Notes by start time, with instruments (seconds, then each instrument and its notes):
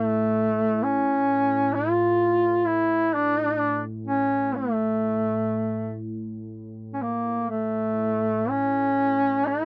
Already playing: ambient pad A2, duduk A3
0.83 duduk C#4
1.75 duduk F4
2.66 duduk E4
3.14 duduk D4
4.07 duduk C#4
4.56 duduk A3
6.52 ambient pad A2
6.93 duduk C#4
7.02 duduk A#3
7.50 duduk A3
8.50 duduk C#4
9.47 duduk E4